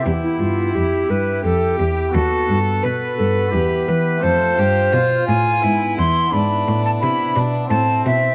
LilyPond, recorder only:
\new Staff \with { instrumentName = "Recorder" } { \time 3/4 \key e \phrygian \tempo 4 = 86 g'16 e'16 f'8 g'8 b'8 a'8 g'8 | fis'8. r16 b'8 a'8 g'8 b'8 | c''4. gis''4 c'''8 | b''8. a''16 b''4 a''8 e''8 | }